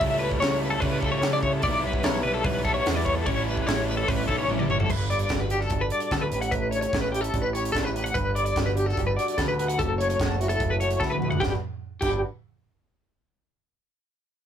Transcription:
Already playing: picked electric bass C#2, overdriven electric guitar C#3 G3 A3 E4
0.00 clean electric guitar E5, kick, open hi-hat
0.19 clean electric guitar B4
0.31 kick
0.40 picked electric bass C#2, clean electric guitar C#5, snare, open hi-hat
0.61 clean electric guitar B4
0.70 clean electric guitar A4
0.80 picked electric bass C#2, overdriven electric guitar C#3 G3 A3, clean electric guitar B4, kick, open hi-hat
0.84 overdriven electric guitar E4
1.00 overdriven electric guitar A3 E4, clean electric guitar A4, kick
1.04 overdriven electric guitar C#3 G3
1.12 clean electric guitar C#5
1.21 picked electric bass C#3, snare, open hi-hat
1.33 clean electric guitar D5
1.43 clean electric guitar C#5, kick
1.53 clean electric guitar A4
1.62 picked electric bass B1, overdriven electric guitar B2 G3 B3 E4, clean electric guitar D5, kick, open hi-hat
1.83 picked electric bass B1, clean electric guitar B4
1.93 kick
2.03 picked electric bass B1, clean electric guitar C#5, snare, open hi-hat
2.23 picked electric bass B1, clean electric guitar B4
2.34 clean electric guitar A4
2.44 picked electric bass B1, clean electric guitar B4, kick, open hi-hat
2.64 overdriven electric guitar B2 G3 B3 E4, clean electric guitar A4, kick
2.74 clean electric guitar C#5
2.85 picked electric bass E2, overdriven electric guitar B2 G3 B3 E4, snare, open hi-hat
2.95 clean electric guitar D5
3.05 clean electric guitar C#5, kick
3.15 clean electric guitar A4
3.26 picked electric bass A1, overdriven electric guitar A2 E3 G3 C#4 E4, clean electric guitar C#5, kick, open hi-hat
3.46 clean electric guitar B4
3.57 kick
3.67 picked electric bass A1, clean electric guitar C#5, snare, open hi-hat
3.87 clean electric guitar B4
3.97 clean electric guitar A4
4.08 picked electric bass A1, clean electric guitar B4, kick, open hi-hat
4.28 picked electric bass B1, overdriven electric guitar E3 G3 C#4 E4, clean electric guitar A4, kick
4.32 overdriven electric guitar A2
4.38 clean electric guitar C#5
4.48 picked electric bass A1, overdriven electric guitar A2 E3 G3 C#4 E4, high tom
4.59 clean electric guitar D5, mid tom
4.69 picked electric bass G1, clean electric guitar C#5, mid tom
4.80 clean electric guitar A4, floor tom
4.90 picked electric bass G1, clean electric guitar G2 B4, kick, crash
5.10 clean electric guitar G3 D5, closed hi-hat
5.19 clean electric guitar D5, closed hi-hat
5.29 picked electric bass G1, clean electric guitar F#4, kick, snare, closed hi-hat
5.40 clean electric guitar B4
5.50 clean electric guitar D4 G4, closed hi-hat
5.61 clean electric guitar A4, snare
5.70 picked electric bass G1, clean electric guitar A4, kick, closed hi-hat
5.81 clean electric guitar B4
5.90 clean electric guitar D5, closed hi-hat
6.00 closed hi-hat
6.11 picked electric bass D2, clean electric guitar G2 A4, kick, snare, closed hi-hat
6.21 clean electric guitar B4
6.32 picked electric bass A1, clean electric guitar A2 G4, closed hi-hat
6.41 clean electric guitar F#5, closed hi-hat
6.51 clean electric guitar A3 B4, kick, closed hi-hat
6.71 clean electric guitar D4 C#5, closed hi-hat
6.81 clean electric guitar E4 C#5, closed hi-hat
6.93 picked electric bass A1, clean electric guitar C#4, kick, snare, closed hi-hat
7.01 clean electric guitar B4
7.12 clean electric guitar G4, closed hi-hat
7.21 clean electric guitar A4, closed hi-hat
7.34 picked electric bass A1, clean electric guitar D4, kick, closed hi-hat
7.42 clean electric guitar E4 B4
7.53 clean electric guitar G4 C#5, closed hi-hat
7.65 closed hi-hat
7.72 picked electric bass A1, clean electric guitar D4 A4, kick, closed hi-hat
7.77 snare
7.84 clean electric guitar E4 B4
7.96 clean electric guitar A2 G4, closed hi-hat
8.04 clean electric guitar F#5, closed hi-hat
8.14 picked electric bass G1, clean electric guitar G2 B4, kick, closed hi-hat
8.35 clean electric guitar G3 D5, closed hi-hat
8.45 clean electric guitar D5, closed hi-hat
8.56 picked electric bass G1, clean electric guitar F#4, kick, snare, closed hi-hat
8.66 clean electric guitar B4
8.76 clean electric guitar D4 G4, closed hi-hat
8.86 clean electric guitar A4, snare
8.97 picked electric bass G1, clean electric guitar G4, kick, closed hi-hat
9.07 clean electric guitar A4 B4
9.17 clean electric guitar F#4 D5, closed hi-hat
9.28 closed hi-hat
9.37 picked electric bass D2, clean electric guitar A4 B4, kick, snare, closed hi-hat
9.48 clean electric guitar B4
9.58 clean electric guitar F#4, closed hi-hat
9.68 clean electric guitar F#5, closed hi-hat
9.78 picked electric bass F#1, clean electric guitar F#3 G4 A4, kick, closed hi-hat
9.88 clean electric guitar A4
9.98 clean electric guitar A3 C#5, closed hi-hat
10.10 clean electric guitar C#5, closed hi-hat
10.20 picked electric bass F#1, clean electric guitar F#4, kick, snare, closed hi-hat
10.29 clean electric guitar A4
10.40 clean electric guitar E4 F#4, closed hi-hat
10.49 clean electric guitar A4, closed hi-hat
10.60 picked electric bass F#1, clean electric guitar A4, kick, closed hi-hat
10.70 clean electric guitar B4
10.80 clean electric guitar F#4 C#5, closed hi-hat
10.90 closed hi-hat
11.00 picked electric bass D2, clean electric guitar A4 B4, kick, snare
11.10 clean electric guitar B4, high tom
11.21 clean electric guitar F#4, mid tom
11.31 clean electric guitar F#5, floor tom
11.40 picked electric bass G1, clean electric guitar G2 G3 D4 F#4 G4, kick, snare
11.45 clean electric guitar B4
12.01 picked electric bass G1, clean electric guitar G2 G3 D4 G4, kick, crash
12.05 clean electric guitar F#4 B4

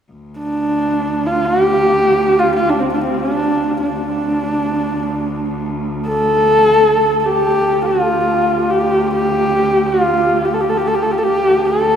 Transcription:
0.12 cello D2
0.39 horsehead fiddle D4
1.26 horsehead fiddle F4
1.46 horsehead fiddle G4
2.39 horsehead fiddle F4
2.56 horsehead fiddle F4
2.70 horsehead fiddle D4
2.80 horsehead fiddle C4
2.92 horsehead fiddle D4
3.04 horsehead fiddle C4
3.17 horsehead fiddle D4
3.83 horsehead fiddle D4
3.88 cello D2
6.08 horsehead fiddle A4
7.20 horsehead fiddle A4
7.26 horsehead fiddle G4
7.65 cello D2
7.85 horsehead fiddle F4
8.71 horsehead fiddle G4
9.14 horsehead fiddle G4
9.86 horsehead fiddle F4
10.45 horsehead fiddle G4
10.54 horsehead fiddle A4
10.61 horsehead fiddle G4
10.70 horsehead fiddle A4
10.77 horsehead fiddle G4
10.87 horsehead fiddle A4
10.95 horsehead fiddle G4
11.03 horsehead fiddle A4
11.11 horsehead fiddle G4
11.18 horsehead fiddle A4
11.24 horsehead fiddle G4
11.37 cello D2
11.65 horsehead fiddle A4

